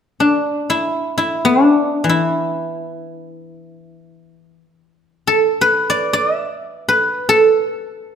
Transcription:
0.20 D4
0.70 E4
1.18 E4
1.45 D4
2.04 E3
2.09 E4
5.27 A4
5.61 B4
5.90 D5
6.13 D5
6.34 E5
6.88 B4
7.29 A4

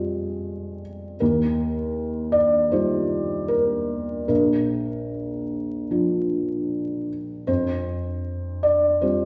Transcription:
Already playing: F2 G3 C4 F4 G#4
1.20 D#2 A#4
2.32 D5
2.72 G3 D#4 F4 C5
3.48 A#4
4.28 A#1 A#4
5.90 F3 D4 F4
7.47 F2 C5
8.63 D5
9.01 G3 C4 F4 C5

